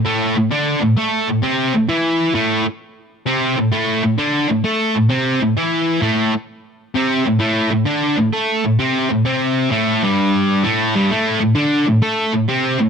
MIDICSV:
0, 0, Header, 1, 2, 480
1, 0, Start_track
1, 0, Tempo, 460829
1, 54, Time_signature, 4, 2, 24, 8
1, 13431, End_track
2, 0, Start_track
2, 0, Title_t, "Distorted electric guitar"
2, 0, Program_c, 0, 30
2, 49, Note_on_c, 0, 45, 102
2, 56, Note_on_c, 0, 57, 117
2, 367, Note_off_c, 0, 45, 0
2, 370, Note_off_c, 0, 57, 0
2, 382, Note_on_c, 0, 45, 69
2, 504, Note_off_c, 0, 45, 0
2, 527, Note_on_c, 0, 50, 92
2, 532, Note_on_c, 0, 62, 94
2, 839, Note_off_c, 0, 50, 0
2, 843, Note_on_c, 0, 45, 70
2, 848, Note_off_c, 0, 62, 0
2, 974, Note_off_c, 0, 45, 0
2, 1008, Note_on_c, 0, 57, 99
2, 1019, Note_on_c, 0, 69, 101
2, 1325, Note_off_c, 0, 57, 0
2, 1329, Note_on_c, 0, 45, 75
2, 1331, Note_off_c, 0, 69, 0
2, 1457, Note_off_c, 0, 45, 0
2, 1480, Note_on_c, 0, 48, 98
2, 1486, Note_on_c, 0, 60, 104
2, 1801, Note_off_c, 0, 48, 0
2, 1804, Note_off_c, 0, 60, 0
2, 1815, Note_on_c, 0, 45, 73
2, 1939, Note_off_c, 0, 45, 0
2, 1964, Note_on_c, 0, 52, 100
2, 1971, Note_on_c, 0, 64, 106
2, 2435, Note_off_c, 0, 52, 0
2, 2439, Note_on_c, 0, 45, 88
2, 2444, Note_off_c, 0, 64, 0
2, 2448, Note_on_c, 0, 57, 91
2, 2759, Note_off_c, 0, 45, 0
2, 2764, Note_off_c, 0, 57, 0
2, 3395, Note_on_c, 0, 48, 82
2, 3404, Note_on_c, 0, 60, 99
2, 3717, Note_off_c, 0, 48, 0
2, 3721, Note_off_c, 0, 60, 0
2, 3722, Note_on_c, 0, 45, 73
2, 3851, Note_off_c, 0, 45, 0
2, 3870, Note_on_c, 0, 45, 100
2, 3877, Note_on_c, 0, 57, 110
2, 4187, Note_off_c, 0, 45, 0
2, 4198, Note_off_c, 0, 57, 0
2, 4200, Note_on_c, 0, 45, 70
2, 4330, Note_off_c, 0, 45, 0
2, 4352, Note_on_c, 0, 50, 87
2, 4358, Note_on_c, 0, 62, 91
2, 4671, Note_off_c, 0, 50, 0
2, 4675, Note_on_c, 0, 45, 68
2, 4678, Note_off_c, 0, 62, 0
2, 4807, Note_off_c, 0, 45, 0
2, 4833, Note_on_c, 0, 57, 92
2, 4843, Note_on_c, 0, 69, 109
2, 5155, Note_off_c, 0, 57, 0
2, 5157, Note_on_c, 0, 45, 71
2, 5160, Note_off_c, 0, 69, 0
2, 5288, Note_off_c, 0, 45, 0
2, 5302, Note_on_c, 0, 48, 97
2, 5312, Note_on_c, 0, 60, 95
2, 5630, Note_off_c, 0, 48, 0
2, 5634, Note_off_c, 0, 60, 0
2, 5638, Note_on_c, 0, 45, 75
2, 5768, Note_off_c, 0, 45, 0
2, 5798, Note_on_c, 0, 52, 91
2, 5805, Note_on_c, 0, 64, 99
2, 6261, Note_off_c, 0, 52, 0
2, 6265, Note_on_c, 0, 45, 91
2, 6274, Note_off_c, 0, 64, 0
2, 6278, Note_on_c, 0, 57, 95
2, 6591, Note_off_c, 0, 45, 0
2, 6597, Note_off_c, 0, 57, 0
2, 7232, Note_on_c, 0, 48, 88
2, 7241, Note_on_c, 0, 60, 94
2, 7554, Note_off_c, 0, 48, 0
2, 7558, Note_off_c, 0, 60, 0
2, 7558, Note_on_c, 0, 45, 74
2, 7685, Note_off_c, 0, 45, 0
2, 7697, Note_on_c, 0, 45, 115
2, 7706, Note_on_c, 0, 57, 109
2, 8018, Note_off_c, 0, 45, 0
2, 8030, Note_on_c, 0, 45, 73
2, 8031, Note_off_c, 0, 57, 0
2, 8164, Note_off_c, 0, 45, 0
2, 8182, Note_on_c, 0, 50, 102
2, 8193, Note_on_c, 0, 62, 95
2, 8509, Note_off_c, 0, 50, 0
2, 8515, Note_off_c, 0, 62, 0
2, 8515, Note_on_c, 0, 45, 73
2, 8646, Note_off_c, 0, 45, 0
2, 8675, Note_on_c, 0, 57, 107
2, 8682, Note_on_c, 0, 69, 110
2, 8996, Note_off_c, 0, 57, 0
2, 8999, Note_off_c, 0, 69, 0
2, 9006, Note_on_c, 0, 45, 75
2, 9132, Note_off_c, 0, 45, 0
2, 9157, Note_on_c, 0, 48, 88
2, 9165, Note_on_c, 0, 60, 94
2, 9477, Note_off_c, 0, 48, 0
2, 9481, Note_off_c, 0, 60, 0
2, 9483, Note_on_c, 0, 45, 77
2, 9610, Note_off_c, 0, 45, 0
2, 9635, Note_on_c, 0, 48, 103
2, 9645, Note_on_c, 0, 60, 106
2, 10103, Note_off_c, 0, 48, 0
2, 10107, Note_on_c, 0, 45, 89
2, 10117, Note_off_c, 0, 60, 0
2, 10121, Note_on_c, 0, 57, 107
2, 10432, Note_off_c, 0, 45, 0
2, 10438, Note_on_c, 0, 43, 91
2, 10439, Note_off_c, 0, 57, 0
2, 10450, Note_on_c, 0, 55, 108
2, 11075, Note_off_c, 0, 43, 0
2, 11077, Note_on_c, 0, 45, 89
2, 11081, Note_off_c, 0, 55, 0
2, 11081, Note_on_c, 0, 57, 100
2, 11398, Note_off_c, 0, 45, 0
2, 11399, Note_off_c, 0, 57, 0
2, 11407, Note_on_c, 0, 43, 98
2, 11412, Note_on_c, 0, 55, 101
2, 11559, Note_off_c, 0, 43, 0
2, 11560, Note_on_c, 0, 45, 95
2, 11562, Note_off_c, 0, 55, 0
2, 11572, Note_on_c, 0, 57, 110
2, 11867, Note_off_c, 0, 45, 0
2, 11879, Note_on_c, 0, 45, 72
2, 11886, Note_off_c, 0, 57, 0
2, 12010, Note_off_c, 0, 45, 0
2, 12029, Note_on_c, 0, 50, 93
2, 12036, Note_on_c, 0, 62, 100
2, 12354, Note_off_c, 0, 50, 0
2, 12358, Note_off_c, 0, 62, 0
2, 12367, Note_on_c, 0, 45, 66
2, 12494, Note_off_c, 0, 45, 0
2, 12519, Note_on_c, 0, 57, 104
2, 12527, Note_on_c, 0, 69, 103
2, 12840, Note_off_c, 0, 57, 0
2, 12843, Note_off_c, 0, 69, 0
2, 12844, Note_on_c, 0, 45, 76
2, 12973, Note_off_c, 0, 45, 0
2, 13004, Note_on_c, 0, 48, 86
2, 13012, Note_on_c, 0, 60, 98
2, 13323, Note_off_c, 0, 48, 0
2, 13326, Note_off_c, 0, 60, 0
2, 13327, Note_on_c, 0, 45, 81
2, 13431, Note_off_c, 0, 45, 0
2, 13431, End_track
0, 0, End_of_file